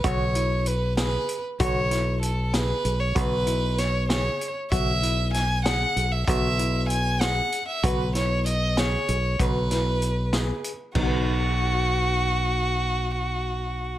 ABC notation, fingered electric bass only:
X:1
M:5/8
L:1/8
Q:1/4=96
K:B
V:1 name="Fingered electric bass" clef=bass
B,,,4 z | B,,,4 B,,, | B,,,4 z | B,,,4 B,,, |
B,,,4 z | B,,,4 B,,, | B,,,4 z | B,,,4- B,,,- |
B,,,4- B,,, |]